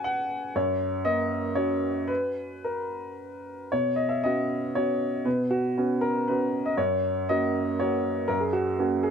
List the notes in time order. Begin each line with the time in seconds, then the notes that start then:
Already playing: C#4 F#4 F#5 G#5
0.04 F#5
0.55 F#2 C#5
1.05 A#3 D#5
1.55 C#4 F#4 C#5
2.08 B4
2.64 A#4
3.72 B2 C#5
3.96 D#5
4.09 E5
4.24 B3 C#4 F#4 D#5
4.75 B3 C#4 F#4 C#5
5.25 B2 B4
5.51 F#4
5.77 B3 C#4 F#4
6.01 A#4
6.28 B3 C#4 F#4 B4
6.66 D#5
6.77 F#2 C#5
7.29 A#3 C#4 F#4 D#5
7.80 A#3 C#4 F#4 C#5
8.28 F#2 A#4
8.41 G#4
8.53 F#4
8.79 A#3 C#4 F#4
9.03 G#4